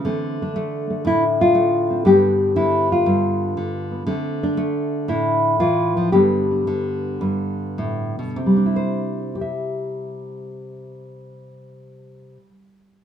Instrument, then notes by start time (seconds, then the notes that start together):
nylon-string guitar
0.05 D3 A3 C4
0.42 D4
0.56 A3
0.90 A3
1.05 A2 E4
1.41 F4
1.55 A3
1.90 C4
2.05 G2 D3 B3 D4 G4
2.56 D3 E4
2.92 F4
3.06 G2
3.57 D3
3.91 B3
4.07 D3 A3 C4
4.43 D4
4.57 A3
5.08 A2 E4
5.60 E3 F4
5.97 F3
6.12 G2 D3 B3 D4 G4
6.51 D4
6.67 D3
7.21 G2
7.78 A2
8.19 B2
8.36 C3
8.46 G3
8.56 D4
8.66 E4
8.76 C5
9.35 G4
9.41 E5